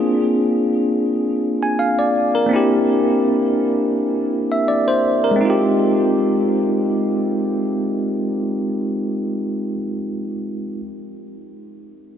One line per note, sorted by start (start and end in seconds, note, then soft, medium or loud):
0.00 2.45 A#3 medium
0.00 2.46 C4 medium
0.00 2.47 D4 medium
0.00 2.48 F4 medium
0.00 2.50 G#4 medium
1.63 1.78 G#5 medium
1.79 1.98 F5 medium
1.99 2.33 D5 medium
2.35 2.69 A#4 medium
2.46 5.34 A#3 medium
2.46 5.35 C4 medium
2.51 5.36 D4 medium
2.51 5.37 E4 medium
2.56 5.39 G4 medium
4.52 4.67 E5 medium
4.68 4.87 D5 medium
4.88 5.22 C5 medium
5.24 5.58 A#4 medium
5.31 9.71 G#3 medium
5.36 9.73 C4 medium
5.41 9.76 D#4 medium
5.45 9.78 F4 medium
5.50 9.80 G4 loud